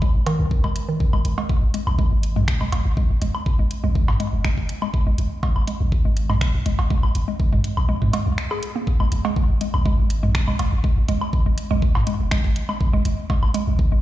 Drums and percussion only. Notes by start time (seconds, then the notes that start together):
0.02 kick
0.27 closed hi-hat, cowbell
0.51 kick
0.64 kick, low woodblock
0.76 closed hi-hat
1.00 kick
1.13 low woodblock
1.25 closed hi-hat
1.38 cowbell
1.49 kick
1.74 closed hi-hat
1.87 low woodblock
1.99 kick
2.23 closed hi-hat
2.36 mid tom
2.48 finger snap, kick
2.61 low woodblock
2.72 closed hi-hat, cowbell
2.97 kick
3.22 closed hi-hat
3.35 low woodblock
3.46 kick
3.71 closed hi-hat
3.95 kick
4.08 mid tom, cowbell, low woodblock
4.20 closed hi-hat
4.45 finger snap, kick
4.57 kick
4.69 closed hi-hat
4.82 low woodblock
4.94 kick
5.18 closed hi-hat
5.43 kick, cowbell
5.56 low woodblock
5.68 closed hi-hat
5.92 kick
6.17 closed hi-hat
6.30 mid tom, low woodblock
6.41 finger snap, kick
6.66 closed hi-hat
6.79 cowbell
6.90 kick
7.03 low woodblock
7.15 closed hi-hat
7.40 kick
7.53 mid tom
7.64 closed hi-hat
7.77 low woodblock
8.02 mid tom
8.13 closed hi-hat, cowbell
8.38 finger snap
8.51 low woodblock
8.63 closed hi-hat
8.87 kick
9.00 low woodblock
9.12 closed hi-hat
9.25 cowbell
9.36 kick
9.61 closed hi-hat
9.74 low woodblock
9.86 kick
10.10 closed hi-hat
10.23 mid tom
10.35 finger snap, kick
10.48 low woodblock
10.59 closed hi-hat, cowbell
10.84 kick
11.09 closed hi-hat
11.21 low woodblock
11.33 kick
11.58 closed hi-hat
11.82 kick
11.95 mid tom, cowbell, low woodblock
12.07 closed hi-hat
12.31 finger snap, kick
12.44 kick
12.56 closed hi-hat
12.69 low woodblock
12.81 kick
13.05 closed hi-hat
13.30 kick, cowbell
13.43 low woodblock
13.54 closed hi-hat
13.79 kick